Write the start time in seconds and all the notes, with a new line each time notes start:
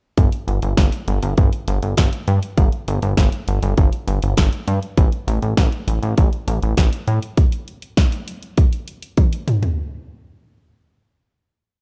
0.18 G1, kick, closed hi-hat
0.32 closed hi-hat
0.48 G1, closed hi-hat
0.62 G1, closed hi-hat
0.77 G1, kick, snare, closed hi-hat
0.92 closed hi-hat
1.08 G1, closed hi-hat
1.23 G1, closed hi-hat
1.37 G1, kick, closed hi-hat
1.53 closed hi-hat
1.68 G1, closed hi-hat
1.83 G1, closed hi-hat
1.97 G1, kick, snare, closed hi-hat
2.13 closed hi-hat
2.28 G2, closed hi-hat
2.43 closed hi-hat
2.58 G1, kick, closed hi-hat
2.72 closed hi-hat
2.88 G1, closed hi-hat
3.02 G1, closed hi-hat
3.17 G1, kick, snare, closed hi-hat
3.32 closed hi-hat
3.48 G1, closed hi-hat
3.63 G1, closed hi-hat
3.77 G1, kick, closed hi-hat
3.93 closed hi-hat
4.07 G1, closed hi-hat
4.22 G1, closed hi-hat
4.37 G1, kick, snare, closed hi-hat
4.53 closed hi-hat
4.68 G2, closed hi-hat
4.83 closed hi-hat
4.97 A1, kick, closed hi-hat
5.12 closed hi-hat
5.27 A1, closed hi-hat
5.42 A1, closed hi-hat
5.57 A1, kick, snare, closed hi-hat
5.72 closed hi-hat
5.88 A1, closed hi-hat
6.03 A1, closed hi-hat
6.18 A1, kick, closed hi-hat
6.33 closed hi-hat
6.48 A1, closed hi-hat
6.63 A1, closed hi-hat
6.77 A1, kick, snare, closed hi-hat
6.93 closed hi-hat
7.08 A2, closed hi-hat
7.22 closed hi-hat
7.37 kick, closed hi-hat
7.52 closed hi-hat
7.68 closed hi-hat
7.82 closed hi-hat
7.97 kick, snare, closed hi-hat
8.12 closed hi-hat
8.28 closed hi-hat
8.43 closed hi-hat
8.57 kick, closed hi-hat
8.73 closed hi-hat
8.88 closed hi-hat
9.02 closed hi-hat
9.17 kick, closed hi-hat, high tom
9.33 closed hi-hat
9.48 closed hi-hat, mid tom
9.63 closed hi-hat, floor tom